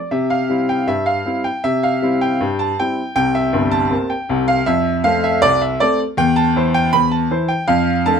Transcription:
0.00 0.11 D5 medium
0.11 0.44 C3 medium
0.11 0.30 E5 medium
0.30 0.68 F5 medium
0.49 0.70 G3 medium
0.49 0.70 C4 soft
0.49 0.71 E4 medium
0.69 0.88 G5 medium
0.87 1.20 G2 medium
0.87 1.06 E5 loud
1.06 1.44 F5 loud
1.25 1.46 G3 soft
1.25 1.47 C4 soft
1.25 1.47 E4 medium
1.44 1.63 G5 medium
1.64 1.96 C3 medium
1.64 1.82 E5 loud
1.83 2.21 F5 medium
2.02 2.23 G3 medium
2.02 2.23 C4 soft
2.02 2.23 E4 medium
2.21 2.59 G5 medium
2.41 2.72 G2 medium
2.59 2.77 A5 loud
2.80 3.00 G3 soft
2.80 3.00 C4 soft
2.80 3.00 E4 medium
2.80 3.14 G5 loud
3.16 3.46 C2 medium
3.16 3.46 C3 medium
3.16 3.34 G5 loud
3.35 3.72 E5 loud
3.53 3.83 G1 medium
3.53 3.83 G2 medium
3.71 4.09 A5 loud
3.90 4.11 A#3 medium
3.90 4.11 C4 medium
3.90 4.11 G4 medium
4.10 4.47 G5 medium
4.29 4.59 C2 medium
4.29 4.59 C3 medium
4.48 4.66 F5 loud
4.66 4.99 F2 medium
4.66 5.04 E5 loud
5.04 5.25 A3 medium
5.04 5.25 C4 medium
5.04 5.25 A4 medium
5.04 5.23 F5 loud
5.24 5.42 E5 loud
5.42 5.74 C2 medium
5.42 5.61 D5 loud
5.62 5.80 E5 medium
5.80 6.01 A3 medium
5.80 6.01 C4 medium
5.80 6.02 A4 medium
5.80 5.99 D5 loud
6.17 6.49 E2 loud
6.17 6.36 G5 loud
6.36 6.74 A5 loud
6.56 6.76 E3 medium
6.56 6.77 E4 medium
6.56 6.77 C5 medium
6.74 6.93 G5 loud
6.93 7.25 E2 loud
6.93 7.12 B5 loud
7.12 7.49 A5 medium
7.31 7.51 E3 medium
7.31 7.52 E4 medium
7.31 7.52 C5 medium
7.48 7.68 G5 loud
7.68 8.00 F2 loud
7.68 8.06 F5 loud
8.06 8.20 A3 medium
8.06 8.20 D4 medium
8.06 8.20 A4 medium
8.06 8.20 A5 loud

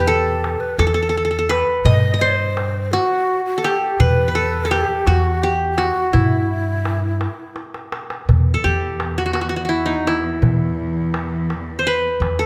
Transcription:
0.00 0.54 E2 medium
0.00 1.25 G4 medium
0.00 0.81 B4 medium
0.00 0.08 B4 medium
0.07 0.62 A4 medium
0.07 0.79 A4 medium
0.07 darbuka ka soft
0.44 darbuka tek medium
0.60 0.79 B4 medium
0.78 1.61 E2 medium
0.78 1.58 A4 medium
0.78 0.86 A4 medium
0.78 darbuka tek medium
0.87 0.94 A4 medium
0.94 1.02 A4 medium
1.02 1.09 A4 medium
1.09 1.17 A4 medium
1.17 1.24 A4 medium
1.25 1.30 A4 medium
1.31 1.38 A4 medium
1.39 2.56 A4 medium
1.49 2.27 B4 medium
1.49 darbuka tek medium
1.85 2.95 G2 medium
1.85 2.21 D#5 loud
1.85 2.13 D#5 loud
1.85 darbuka dum medium
2.14 3.09 D#5 medium
2.20 2.93 C5 loud
2.20 3.27 C5 medium
2.20 darbuka ka soft
2.57 darbuka tek medium
2.92 3.45 F#4 medium
2.92 3.70 F#4 medium
2.92 darbuka tek medium
3.45 3.64 F#4 medium
3.58 4.35 A4 medium
3.63 4.00 G4 medium
3.63 4.71 G4 medium
3.63 darbuka tek medium
3.99 4.82 E2 loud
3.99 4.72 B4 medium
3.99 4.28 B4 loud
3.99 darbuka dum medium
4.28 5.37 B4 medium
4.35 4.64 A4 medium
4.35 darbuka ka soft
4.65 5.82 A4 medium
4.71 5.07 G4 medium
4.71 5.13 G4 medium
4.71 darbuka tek medium
5.06 5.89 E2 medium
5.06 5.44 F#4 medium
5.06 5.49 F#4 medium
5.06 darbuka tek medium
5.42 5.71 G4 medium
5.42 5.84 G4 medium
5.71 5.78 G4 medium
5.78 7.08 F#4 medium
5.78 5.84 G4 medium
5.78 darbuka tek medium
5.83 6.14 F#4 medium
6.13 7.24 G2 medium
6.13 7.56 E4 medium
6.13 7.52 E4 medium
6.13 darbuka dum medium
6.50 darbuka ka soft
6.85 darbuka tek medium
7.21 darbuka tek medium
7.56 darbuka tek soft
7.74 darbuka ka medium
7.92 darbuka tek medium
8.10 darbuka ka medium
8.29 8.56 E2 medium
8.29 12.46 E2 medium
8.29 darbuka dum medium
8.54 9.71 A4 medium
8.64 9.74 E2 medium
8.64 9.24 G4 medium
9.00 darbuka tek medium
9.18 9.25 F#4 medium
9.26 9.33 F#4 medium
9.33 9.41 F#4 medium
9.33 darbuka tek medium
9.41 9.49 F#4 medium
9.49 9.56 F#4 medium
9.56 9.64 F#4 medium
9.65 10.95 F#4 soft
9.69 9.92 E4 medium
9.86 10.13 D#4 medium
10.07 11.59 E4 medium
10.07 darbuka tek medium
10.42 11.53 E3 medium
10.42 darbuka dum medium
11.14 darbuka tek medium
11.50 darbuka tek medium
11.79 11.93 C5 medium
11.87 12.46 B4 medium
12.20 12.46 E2 medium
12.20 darbuka tek medium
12.39 12.46 A4 medium

